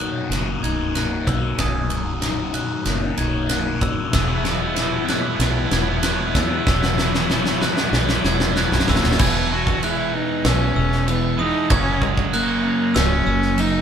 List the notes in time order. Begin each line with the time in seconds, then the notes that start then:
Already playing: B1 A#3 D#4 F#5 B5
0.00 B1 F#3 F#6, ride
0.05 F#2
0.12 B1 F#2
0.19 B1 F#2
0.26 B1 F#2
0.30 F#1 A#3, snare, ride
0.34 B1 F#2
0.42 B1 F#2
0.50 B1 F#2
0.58 B1 F#2
0.63 B0 B1 F#2 D#4 G#6, ride
0.72 B1 F#2
0.80 B1 F#2
0.88 B1 F#2
0.95 B1 F#2 A#3 F#6, snare, ride
1.03 B1 F#2
1.11 B1 F#2
1.20 B1 F#2
1.27 B1 F#2 F#3 E6, kick, ride
1.34 B1 F#2
1.41 B1 F#2
1.49 B1 F#2
1.58 B0 B1 F#2 G#5 D#6, kick, snare, ride
1.66 B1 F#2
1.74 B1 F#2
1.83 B1 F#2
1.89 B1 F#2, ride
1.97 B1 F#2
2.05 B1 F#2
2.13 B1 F#2
2.20 B1 F#2 D#4, snare, ride
2.28 B1 F#2
2.35 B1 F#2
2.42 B1 F#2
2.51 B1 F#2 F#3 F#6, ride
2.58 B1 F#2
2.67 B1 F#2
2.74 B1 F#2
2.82 F#1 B1 F#2 A#3, snare, ride
2.89 B1 F#2
2.96 B1 F#2
3.04 B1 F#2
3.12 B1 F#2
3.18 B0 B1 F#2 D#4 G#6, ride
3.28 B1 F#2
3.36 B1 F#2
3.42 B1 F#2
3.49 B1 F#2 A#3 F#6, snare, ride
3.58 B1 F#2
3.66 B1 F#2
3.74 B1 F#2
3.81 D#1 B1 F#2 F#3 E6, kick, ride
3.90 B1 F#2
3.97 B1 F#2
4.05 B1 F#2
4.12 E1 E2 B2 B3 E4 G#4 E6, kick, snare, ride
4.20 E2 B2 B3 E4
4.28 E2 B2 B3 E4
4.35 E2 B2 B3 E4
4.43 E2 B2 B3 E4, snare, ride
4.51 E2 B2 B3 E4
4.59 E2 B2 B3 E4
4.66 E2 B2 B3 E4
4.73 E2 B2 B3 E4, snare, ride
4.81 E2 B2 B3 E4
4.89 E2 B2 B3 E4
4.96 E2 B2 B3 E4
5.04 E2 B2 B3 E4
5.08 E2 G#3 B3 F#6, snare, ride
5.13 B2 E4
5.20 E2 B2 B3 E4
5.27 E2 B2 B3 E4
5.35 E2 B2 B3 E4
5.39 B1 E2 B3 E4, snare, ride
5.44 B2
5.50 E2 B2 B3 E4
5.57 E2 B2 B3 E4
5.65 E2 B2 B3 E4
5.71 E1 E2 B2 B3 E4 G#6, snare, ride
5.81 E2 B2 B3 E4
5.88 E2 B2 B3 E4
5.96 E2 B2 B3 E4
6.03 E2 B2 B3 E4 F#6, snare, ride
6.11 E2 B2 B3 E4
6.19 E2 B2 B3 E4
6.27 E2 B2 B3 E4
6.34 E2 B2 G#3 B3 E4 E6, kick, snare, ride
6.42 E2 B2 B3 E4
6.49 E2 B2 B3 E4
6.56 E2 B2 B3 E4
6.66 E1 E2 B2 B3 E4 E6, kick, snare
6.74 E2 B2 B3 E4
6.81 E2 B2 B3 E4, snare
6.89 E2 B2 B3 E4
6.97 E2 B2 B3 E4, snare
7.04 E2 B2 B3 E4
7.11 E2 B2 B3 E4, snare
7.20 E2 B2 B3 E4
7.26 E2 B2 B3 E4, snare
7.35 E2 B2 B3 E4
7.41 E2 B2 B3 E4
7.46 snare
7.50 E2 B2 B3 E4
7.58 E2 B2 B3 E4, snare
7.62 G#3 B3 F#6
7.66 E2 B2 E4
7.73 E2 B2 B3 E4, snare
7.81 E2 B2 B3 E4
7.89 B1 E2 B2 B3 E4
7.93 B3 E4, snare
7.97 E2 B2
8.04 E2 B2 B3 E4
8.09 B2 B3, snare
8.13 E2 E4
8.18 E2 B2 B3 E4
8.24 E1 E2 B2 B3 E4 G#6, snare
8.34 E2 B2 B3 E4
8.40 E2 B2 B3 E4, snare
8.49 E2 B2 B3 E4
8.56 E2 B2 B3 E4 F#6, snare
8.65 E2 B2 B3 E4
8.72 B0 E2 B2 B3 E4, snare
8.79 E2 B2 B3 E4, snare
8.87 C#1 E2 B2 G#3 A#3 B3 E4 E6, kick, snare
8.95 E2 B2 B3 E4, snare
9.03 D#1 E2 B2 B3 E4, snare
9.10 E2 B2 B3 E4, snare
9.19 E1 E2 B2 E3 B3 B4 G#5 B5 G#6, kick, crash
9.52 F#4
9.67 kick
9.83 G#3 E4 F#6, crash
10.14 B3 D#4
10.45 B1 C#4 E6, snare, crash
10.76 E1 G#3 E6
10.92 snare
11.08 E3 B3, crash
11.37 E2 B2 E3 G#3 D#4 D#6
11.69 F#1 F#2 C#3 F#3 C#4 F#4 C#5 A#5 C#6 G#6, kick, crash
12.02 G#3, kick
12.17 kick
12.33 A#3 F#6, crash
12.64 C#4
12.95 C#1 C#4 F#4 E6, snare, crash
13.26 F#1 A#3 E6
13.42 snare
13.57 F#3 D#4, crash